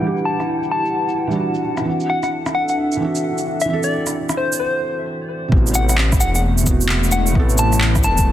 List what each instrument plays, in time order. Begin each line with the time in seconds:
Already playing: felt piano D4 F#4, ambient pad E4 B4 F#5
0.00 felt piano E3 G3 D4
0.07 felt piano G4
0.17 shaker
0.25 soft synth lead A5
0.40 cross-stick, shaker
0.63 shaker
0.71 soft synth lead A5
0.86 shaker
1.09 shaker
1.27 felt piano E3 G3
1.31 felt piano D4 F#4, shaker
1.55 shaker
1.77 felt piano E3, cross-stick, shaker
1.84 felt piano C4 D4, ambient pad D4
1.89 felt piano F#4
2.00 ambient pad E5, shaker
2.08 ambient pad A4, soft synth lead F#5
2.23 soft synth lead F#5, cross-stick, shaker
2.46 cross-stick, shaker
2.55 soft synth lead F#5
2.69 soft synth lead F#5, shaker
2.92 shaker
2.97 felt piano E3 C4
3.02 felt piano D4 F#4
3.15 shaker
3.38 shaker
3.61 soft synth lead E5, shaker
3.65 felt piano E3 C4
3.70 felt piano D4 A4, soft synth lead E5
3.83 soft synth lead D5, shaker
4.07 cross-stick, shaker
4.29 cross-stick, shaker
4.37 soft synth lead C5
4.53 shaker
4.60 soft synth lead C5
5.48 detuned saw bass A1, felt piano C3 B3, ambient pad A3, kick
5.56 felt piano F#4
5.67 shaker
5.75 soft synth lead F#5, cabasa
5.89 ambient pad E4, soft synth lead F#5, cross-stick, cabasa, shaker
5.97 ambient pad B4, clap
6.12 kick, cross-stick, shaker
6.20 detuned saw bass E1, soft synth lead F#5, cabasa
6.35 soft synth lead F#5, shaker
6.58 shaker
6.63 felt piano C3 B3, cabasa
6.67 felt piano F#4, kick
6.81 shaker
6.89 clap
7.04 shaker
7.12 soft synth lead F#5, cabasa
7.27 shaker
7.32 detuned saw bass A1, felt piano C3 B3, kick
7.39 felt piano A4
7.49 shaker
7.58 soft synth lead A5, cabasa
7.73 cross-stick, shaker
7.81 clap
7.95 kick, cross-stick, shaker
8.04 detuned saw bass E1, soft synth lead A5, cabasa
8.18 kick, shaker